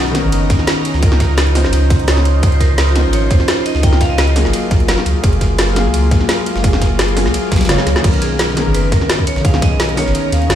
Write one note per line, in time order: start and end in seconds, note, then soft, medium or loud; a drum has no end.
0.00 0.25 B1 loud
0.00 0.11 D#3 medium
0.00 0.14 B3 medium
0.00 0.16 C#4 medium
0.00 0.99 C#4 medium
0.00 4.32 D#4 medium
0.00 1.04 G#4 loud
0.00 0.18 A#4 loud
0.00 1.04 B4 medium
0.00 0.99 A#5 medium
0.06 snare soft
0.11 0.99 D#3 loud
0.11 1.00 B3 medium
0.11 snare medium
0.11 closed hi-hat medium
0.11 ride medium
0.16 1.00 C#4 loud
0.16 1.02 A#4 loud
0.24 0.52 F#1 loud
0.32 closed hi-hat medium
0.32 ride medium
0.50 0.58 D#2 loud
0.50 kick loud
0.50 snare soft
0.50 closed hi-hat medium
0.50 ride medium
0.59 snare soft
0.67 snare loud
0.67 closed hi-hat medium
0.67 ride medium
0.85 closed hi-hat medium
0.85 ride medium
0.94 1.66 C#2 medium
0.94 snare soft
0.99 1.52 F3 medium
0.99 1.53 C#4 medium
0.99 4.33 F4 medium
0.99 4.33 C6 medium
0.99 kick loud
0.99 closed hi-hat medium
0.99 ride medium
1.04 1.54 D#4 medium
1.04 1.55 A#4 loud
1.12 snare medium
1.20 kick medium
1.20 snare medium
1.20 closed hi-hat medium
1.20 ride medium
1.38 snare loud
1.38 closed hi-hat medium
1.38 ride medium
1.47 ride soft
1.54 1.88 F3 medium
1.54 1.88 C#4 medium
1.54 1.89 D#4 medium
1.54 1.90 C5 loud
1.54 snare medium
1.54 open hi-hat medium
1.54 ride medium
1.64 1.72 G#1 loud
1.64 snare soft
1.73 2.42 C#2 loud
1.73 closed hi-hat medium
1.73 ride medium
1.90 kick loud
1.90 snare soft
1.90 closed hi-hat medium
1.90 ride medium
1.99 ride soft
2.06 2.38 F3 medium
2.06 2.40 C#4 medium
2.06 2.41 D#4 medium
2.06 2.42 C#5 medium
2.06 snare loud
2.06 closed hi-hat medium
2.06 ride medium
2.17 snare soft
2.25 closed hi-hat medium
2.25 ride medium
2.40 3.06 C#2 loud
2.40 2.91 F3 medium
2.40 2.93 C#4 medium
2.40 kick loud
2.40 closed hi-hat medium
2.40 ride medium
2.44 2.94 D#4 medium
2.44 2.95 C5 medium
2.52 2.60 C5 medium
2.52 ride soft
2.60 3.15 A#4 medium
2.60 kick medium
2.60 snare soft
2.60 closed hi-hat medium
2.60 ride medium
2.78 snare loud
2.78 closed hi-hat medium
2.78 ride medium
2.87 snare soft
2.92 3.78 F3 loud
2.92 3.81 C#4 medium
2.92 snare medium
2.92 closed hi-hat medium
2.92 ride medium
2.97 3.82 D#4 medium
2.97 3.83 C5 loud
3.05 3.32 G#1 loud
3.13 3.31 C#5 loud
3.13 closed hi-hat medium
3.13 ride medium
3.31 3.39 F2 loud
3.31 3.67 C5 loud
3.31 kick loud
3.31 snare soft
3.31 closed hi-hat medium
3.31 ride medium
3.40 snare soft
3.48 snare loud
3.48 closed hi-hat medium
3.48 ride medium
3.66 3.74 D#5 loud
3.66 closed hi-hat medium
3.66 ride medium
3.75 4.47 C#2 medium
3.75 snare medium
3.80 4.32 F3 medium
3.80 4.33 C#4 medium
3.80 4.01 G5 loud
3.80 kick loud
3.80 closed hi-hat medium
3.80 ride medium
3.85 4.35 D#4 medium
3.85 4.36 A#4 loud
3.93 snare medium
4.01 4.09 F5 loud
4.01 kick medium
4.01 snare medium
4.01 closed hi-hat medium
4.01 ride medium
4.10 4.17 D#5 loud
4.18 4.36 D#5 loud
4.18 snare loud
4.18 closed hi-hat medium
4.18 ride medium
4.28 ride soft
4.34 4.69 F#3 loud
4.34 8.01 G#3 medium
4.34 4.69 A#3 medium
4.34 8.01 A#3 medium
4.34 8.01 F4 medium
4.34 4.70 F4 medium
4.34 4.70 G#4 loud
4.34 7.65 A#4 medium
4.34 snare medium
4.34 open hi-hat medium
4.34 ride medium
4.45 4.53 F#1 loud
4.45 snare soft
4.53 closed hi-hat medium
4.53 ride loud
4.71 4.88 A#1 loud
4.71 kick loud
4.71 snare soft
4.71 closed hi-hat medium
4.71 ride medium
4.80 ride soft
4.87 4.97 F#1 loud
4.87 5.19 F#3 medium
4.87 5.21 A#3 medium
4.87 5.22 F4 medium
4.87 5.23 A#4 medium
4.87 snare loud
4.87 closed hi-hat medium
4.87 ride medium
4.98 snare soft
5.06 5.14 C#2 medium
5.06 closed hi-hat medium
5.06 ride medium
5.20 5.87 F#1 loud
5.20 5.71 F#3 medium
5.20 5.74 A#3 medium
5.20 kick loud
5.20 closed hi-hat medium
5.20 ride medium
5.25 5.75 F4 medium
5.25 5.76 G#4 medium
5.33 ride soft
5.41 kick medium
5.41 snare soft
5.41 closed hi-hat medium
5.41 ride medium
5.59 snare loud
5.59 closed hi-hat loud
5.59 ride medium
5.68 snare soft
5.73 6.59 F#3 loud
5.73 6.61 A#3 loud
5.73 snare medium
5.73 closed hi-hat medium
5.73 ride medium
5.77 6.63 F4 medium
5.77 6.64 G#4 loud
5.85 6.13 C#2 loud
5.94 closed hi-hat medium
5.94 ride medium
6.11 6.20 A#1 loud
6.11 kick loud
6.11 snare soft
6.11 closed hi-hat medium
6.11 ride medium
6.21 snare soft
6.29 snare loud
6.29 closed hi-hat loud
6.29 ride medium
6.46 closed hi-hat medium
6.46 ride medium
6.56 7.27 F#1 medium
6.56 snare medium
6.61 7.13 F#3 medium
6.61 7.14 A#3 medium
6.61 kick loud
6.61 closed hi-hat medium
6.61 ride medium
6.65 7.15 F4 medium
6.65 7.16 G#4 loud
6.73 snare medium
6.82 kick medium
6.82 snare medium
6.82 closed hi-hat medium
6.82 ride medium
6.99 snare loud
6.99 closed hi-hat loud
6.99 ride medium
7.08 ride soft
7.15 7.49 F#3 medium
7.15 7.50 A#3 medium
7.15 7.50 F4 medium
7.15 7.51 G#4 loud
7.15 snare medium
7.15 open hi-hat medium
7.15 ride medium
7.26 7.33 C#2 loud
7.26 snare soft
7.34 closed hi-hat medium
7.34 ride medium
7.52 7.69 A#1 loud
7.52 kick loud
7.52 snare medium
7.52 closed hi-hat medium
7.52 high tom medium
7.52 ride medium
7.56 snare medium
7.56 ride medium
7.61 snare medium
7.61 high tom medium
7.61 ride medium
7.65 7.75 F#3 loud
7.65 7.76 A#3 medium
7.65 snare medium
7.65 ride medium
7.69 7.78 F#1 loud
7.69 7.77 F4 loud
7.69 7.77 C#5 loud
7.69 snare loud
7.69 closed hi-hat loud
7.69 mid tom medium
7.69 ride medium
7.77 8.01 F#3 medium
7.77 8.02 A#3 medium
7.77 8.03 F4 medium
7.77 8.03 G#4 loud
7.77 snare medium
7.77 snare soft
7.87 7.95 C#2 medium
7.87 snare soft
7.87 closed hi-hat medium
7.87 ride medium
7.96 snare medium
7.96 ride soft
8.01 8.68 B1 loud
8.01 8.52 D#3 medium
8.01 8.54 B3 medium
8.01 10.55 C#4 medium
8.01 10.55 D#4 medium
8.01 10.55 A#5 medium
8.01 kick loud
8.01 closed hi-hat medium
8.01 ride medium
8.01 crash loud
8.05 8.56 C#4 medium
8.05 8.57 A#4 medium
8.13 8.22 A#4 medium
8.13 ride soft
8.22 8.76 G#4 medium
8.22 snare soft
8.22 closed hi-hat loud
8.22 ride medium
8.39 snare loud
8.39 closed hi-hat medium
8.39 ride medium
8.48 snare soft
8.53 9.40 D#3 loud
8.53 9.42 B3 medium
8.53 snare medium
8.53 closed hi-hat loud
8.53 ride medium
8.58 9.43 C#4 medium
8.58 9.44 A#4 loud
8.66 8.94 F#1 loud
8.74 8.93 B4 loud
8.74 closed hi-hat medium
8.74 ride loud
8.92 9.00 D#2 loud
8.92 9.28 A#4 loud
8.92 kick loud
8.92 snare soft
8.92 closed hi-hat loud
8.92 ride medium
9.01 snare soft
9.10 snare loud
9.10 closed hi-hat medium
9.10 ride medium
9.19 kick medium
9.27 9.45 C#5 loud
9.27 closed hi-hat loud
9.27 ride medium
9.36 10.08 B1 medium
9.36 snare medium
9.41 9.94 D#3 medium
9.41 9.95 B3 medium
9.41 9.63 F5 loud
9.41 kick loud
9.41 closed hi-hat medium
9.41 ride medium
9.46 9.96 C#4 medium
9.46 9.97 G#4 loud
9.54 snare medium
9.62 9.95 D#5 loud
9.62 kick loud
9.62 snare medium
9.62 closed hi-hat medium
9.62 ride medium
9.80 snare loud
9.80 closed hi-hat medium
9.80 ride medium
9.89 ride soft
9.96 10.30 D#3 medium
9.96 10.30 B3 medium
9.96 10.31 C#4 medium
9.96 10.32 A#4 loud
9.96 10.34 C#5 loud
9.96 snare medium
9.96 open hi-hat medium
9.96 ride medium
10.06 10.14 F#1 loud
10.06 snare soft
10.15 closed hi-hat medium
10.15 ride medium
10.32 10.49 D#2 loud
10.32 10.55 F5 loud
10.32 snare soft
10.32 closed hi-hat medium
10.32 ride medium
10.42 ride soft
10.48 10.55 B1 loud
10.48 10.55 D#3 medium
10.48 10.55 B3 medium
10.48 10.55 C#4 medium
10.48 10.55 B4 medium
10.48 snare loud
10.48 closed hi-hat medium
10.48 ride medium